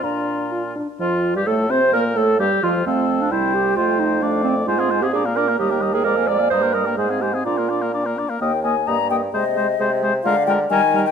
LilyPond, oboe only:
\new Staff \with { instrumentName = "Oboe" } { \time 2/4 \key f \mixolydian \tempo 4 = 130 f'4. r8 | f'8. g'16 a'8 c''8 | bes'8 a'8 g'8 f'8 | a'4 c''4 |
c''4 d''4 | \key ees \major c''16 aes'16 c''16 aes'16 d''16 bes'16 d''16 bes'16 | ees''16 bes'16 ees''16 bes'16 d''16 f''16 d''16 f''16 | ees''16 bes'16 ees''16 bes'16 c''16 aes'16 c''16 aes'16 |
d''16 bes'16 d''16 bes'16 d''16 bes'16 d''16 bes'16 | ees''8 ees''8 ees''8 ees''8 | c''8 c''8 c''8 c''8 | bes'8 bes'8 bes'8 bes'8 | }